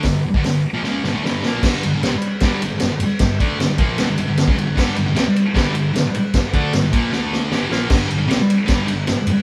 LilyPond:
<<
  \new Staff \with { instrumentName = "Distorted electric guitar" } { \clef bass \time 4/4 \key g \minor \tempo 4 = 153 <g, d>8 r16 <g, d>16 <g, d>8 r16 <bes, f>16 <cis aes cis'>8 <g, d>16 <d a>16 <g, d g>8 <bes, f bes>8 | <g, d g>8 <g, d>16 <g, d>16 <c g>16 r8. <g, d g>8 <g, d>8 <g, d>16 r8. | <g, d>8 <d a d'>8 <g, d>16 <g, d>16 <bes, f bes>8 <g, d>16 <g, d>16 <g, d>16 <g, d>8 <cis aes>16 <g, d>16 <g, d>16 | <g, d g>8 <g, d>16 <g, d>16 <c g>16 r8. <g, d g>8 <g, d>8 <g, d>16 r8. |
<g, d>8 <d a d'>8 <g, d>16 <g, d>16 <bes, f bes>8 <d a d'>4 <g, d g>8 <bes, f bes>8 | <g, d g>8 <g, d>16 <g, d>16 <c g>16 r8. <g, d g>8 <g, d>8 <g, d>16 r8. | }
  \new DrumStaff \with { instrumentName = "Drums" } \drummode { \time 4/4 <hho bd sn>8. bd16 <hho sn>4 sn8 sn8 sn8 sn8 | <cymc bd sn>8 cymr8 <cymr sn>8 cymr8 <bd cymr sn>8 cymr8 <cymr sn>8 cymr8 | <bd cymr sn>8 <bd cymr>8 <cymr sn>8 <bd cymr>8 <cymr sn>8 cymr8 <cymr sn>16 bd16 cymr8 | <cymc bd sn>8 cymr8 <cymr sn>8 cymr8 <bd cymr sn>8 cymr8 <cymr sn>8 cymr8 |
<bd cymr sn>8 <bd cymr>8 <cymr sn>8 <bd cymr>8 sn8 sn8 sn8 sn8 | <cymc bd sn>8 cymr8 <cymr sn>8 cymr8 <bd cymr sn>8 cymr8 <cymr sn>8 cymr8 | }
>>